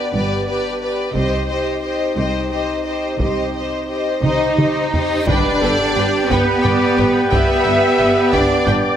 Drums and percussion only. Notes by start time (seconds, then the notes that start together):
1.15 taiko
3.20 taiko
4.23 taiko mid
4.58 taiko mid
4.94 taiko low
5.28 taiko
6.30 taiko
6.65 taiko low-mid
6.99 taiko low-mid
7.33 taiko
8.33 taiko
8.67 taiko low-mid